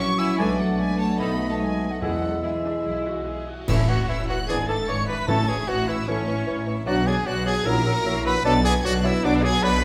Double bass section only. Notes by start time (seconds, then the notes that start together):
0.38 B1
1.19 B1
2.01 E2
2.85 B1
3.68 A1
4.08 A1
4.48 G#1
4.88 G#1
5.28 A1
5.68 A1
6.08 A1
6.47 A1
6.86 B1
7.26 B1
7.66 A#1
8.05 A#1
8.45 B1
8.85 B1
9.24 B1
9.63 B1